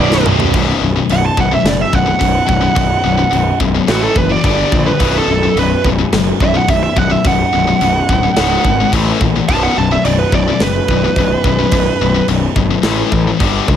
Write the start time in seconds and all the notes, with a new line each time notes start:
Already playing: D5
0.00 B0 B1 F#2 B2
0.12 snare
0.26 B0 B1 F#2 B2, mid tom
0.40 floor tom
0.54 B0 B1 F#2 B2, kick, crash
0.81 B0 B1 F#2
0.96 B1 F#2
1.09 B0 B1 F#2 F#5, crash
1.25 A5
1.37 B0 B1 F#2 F#5, kick
1.51 B1 F#2 E5
1.64 F#1 B1 F#2, snare, crash
1.69 D5
1.81 E5
1.93 B0 B1 F#2 F#5, kick
2.06 B1 F#2
2.19 B0 B1 F#2, kick, crash
2.47 B0 B1 F#2, kick
2.61 B1 F#2
2.75 B0 B1 F#2, kick, crash
3.04 B0 B1 F#2
3.18 B1 F#2
3.31 B0 B1 F#2, crash
3.60 B0 B1 F#2, kick
3.75 B1 F#2
3.88 A1 A2 E3 A3 F#4, snare, crash
4.04 A4
4.15 F#1 A2 E3 B4, kick
4.29 A2 E3 D5
4.43 G1 G2 D3 G3, kick, crash
4.72 A#1 G2 D3, kick
4.87 G2 D3 B4
4.99 B0 B1 F#2 B2, kick, crash
5.18 A4
5.28 B0 B1 F#2
5.43 B1 F#2
5.56 B0 B1 F#2 B4, crash
5.84 B0 B1 F#2, kick
5.99 B1 F#2
6.13 F#1 B1 F#2, snare, crash
6.40 B0 B1 F#2 E5, kick
6.54 B1 F#2 F#5
6.68 B0 B1 F#2 E5, kick, crash
6.83 E5
6.96 B0 B1 F#2 F#5, kick
7.10 B1 F#2 E5
7.24 B0 B1 F#2 F#5, kick, crash
7.53 B0 B1 F#2
7.67 B1 F#2
7.81 B0 B1 F#2, crash
8.09 D1 B1 F#2, kick
8.23 B1 F#2
8.36 C#1 C#2 G#2 C#3, snare, crash
8.65 G#1 C#2 G#2, kick
8.80 C#2 G#2
8.92 A1 A2 E3 A3, kick, crash
9.21 A#1 A2 E3, kick
9.36 A2 E3
9.49 B0 B1 F#2 B2 A5, kick, crash
9.64 F#5
9.77 B0 B1 F#2 A5
9.91 B1 F#2 E5
10.05 B0 B1 F#2 D5, crash
10.19 B4
10.32 B0 B1 F#2 D5, kick
10.48 B1 F#2
10.60 F#1 B1 F#2 B4, snare, crash
10.88 B0 B1 F#2, kick
11.04 B1 F#2
11.16 B0 B1 F#2, kick, crash
11.44 B0 B1 F#2, kick
11.59 B1 F#2
11.71 B0 B1 F#2, kick, crash
12.01 B0 B1 F#2
12.15 B1 F#2
12.28 B0 B1 F#2, crash
12.56 G1 B1 F#2, kick
12.71 B1 F#2
12.83 A1 A2 E3 A3, snare, crash
13.12 A1 A2 E3, kick
13.28 A2 E3
13.40 G1 G2 D3 G3, kick, crash
13.68 C#2 G2 D3, kick